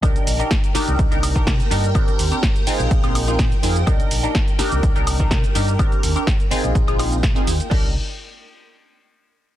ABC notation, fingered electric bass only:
X:1
M:4/4
L:1/16
Q:1/4=125
K:Cm
V:1 name="Fingered electric bass" clef=bass
C,, z B,,, z4 C,, C,, C,,3 C, z G,, z | A,,, z E,, z4 B,,, B,,, B,,,3 B,, z F,, z | C,, z B,,, z4 C,, C,, C,,3 C, z G,, z | A,,, z E,, z4 B,,, B,,, B,,,3 B,, z E,, z |
C,,2 z12 z2 |]